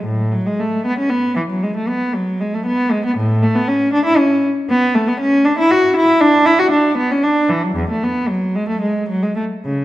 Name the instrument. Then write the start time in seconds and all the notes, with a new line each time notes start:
cello
0.05 A2
0.32 F#3
0.47 G#3
0.60 A3
0.86 B3
0.98 C#4
1.10 B3
1.36 E3
1.50 F#3
1.63 G#3
1.76 A3
1.89 B3
2.15 F#3
2.41 G#3
2.54 A3
2.66 B3
2.92 G#3
3.06 B3
3.18 A2
3.43 A3
3.56 B3
3.68 C#4
3.93 D4
4.05 E4
4.18 C#4
4.70 B3
4.95 A3
5.08 B3
5.20 C#4
5.45 D4
5.58 E4
5.71 F#4
5.97 E4
6.21 D4
6.46 E4
6.59 F#4
6.71 D4
6.97 B3
7.11 C#4
7.24 D4
7.49 E3
7.64 F#3
7.76 E2
7.90 A3
8.04 B3
8.28 F#3
8.55 G#3
8.69 A3
8.81 G#3
9.09 F#3
9.23 G#3
9.36 A3
9.65 C#3